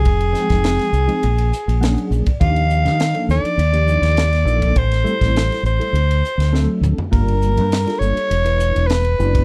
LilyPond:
<<
  \new Staff \with { instrumentName = "Soprano saxophone" } { \time 4/4 \key ees \lydian \tempo 4 = 102 aes'2.~ aes'8 r8 | f''4. d''2~ d''8 | c''4. c''2 r8 | bes'4. cis''4. b'4 | }
  \new Staff \with { instrumentName = "Tine electric piano" } { \time 4/4 \key ees \lydian << { r2 r8 aes''8 fis''8 d''8 | r1 | r1 | r1 | } \\ { r8 <f aes c' ees' g''>4 r16 <f aes c' ees' aes'>16 r4 <fis bes cis' d' aes'>8. r16 | <f bes d' ees' g'>4 r16 <f bes d' ees' a'>8. r16 <f bes d' ees' g'>4 r16 <f bes d' ees' a'>8 | r8 <g a c' e' a'>4 r16 <g a c' e' a'>16 r4 <fis a c' d' a'>8. r16 | <g bes d' f' bes'>4 r16 <g bes d' f' a'>8. r16 <gis b d' e' b'>4 r16 <gis b d' e' d''>8 | } >> }
  \new Staff \with { instrumentName = "Fingered electric bass" } { \clef bass \time 4/4 \key ees \lydian f,,8 r16 f,,8 r16 c,16 r16 bes,,8 r16 bes,,8 r16 bes,,16 r16 | ees,8. ees8 r16 ees,16 r16 ees,8. ees,8. bes,,8 | a,,8 r16 a,,8 r16 a,,16 r16 d,8 r16 d,8 r16 d,16 r16 | g,,8. g,8 r16 g,,16 r16 e,,8. e,,8. fis,,8 | }
  \new DrumStaff \with { instrumentName = "Drums" } \drummode { \time 4/4 <bd cymr>16 cymr16 <hhp sn>16 <bd cymr sn>16 <cymr sn>16 <cymr sn>16 hhp16 cymr16 cymr16 cymr16 hhp16 cymr16 <cymr sn>16 cymr16 hhp16 <bd cymr>16 | <bd cymr>16 cymr16 hhp16 <cymr sn>16 <cymr sn>16 cymr16 <hhp sn>16 cymr16 cymr16 cymr16 hhp16 <cymr sn>16 <cymr sn>16 <cymr sn>16 hhp16 <bd cymr>16 | <bd cymr>16 <cymr sn>16 hhp16 <bd cymr sn>16 <cymr sn>16 <cymr sn>16 hhp16 cymr16 cymr16 cymr16 hhp16 <cymr sn>16 sn8 <hhp toml>16 tomfh16 | <bd cymr>16 cymr16 hhp16 cymr16 <cymr sn>16 <cymr sn>16 hhp16 cymr16 cymr16 cymr16 hhp16 cymr16 <cymr sn>16 cymr16 hhp16 <bd cymr>16 | }
>>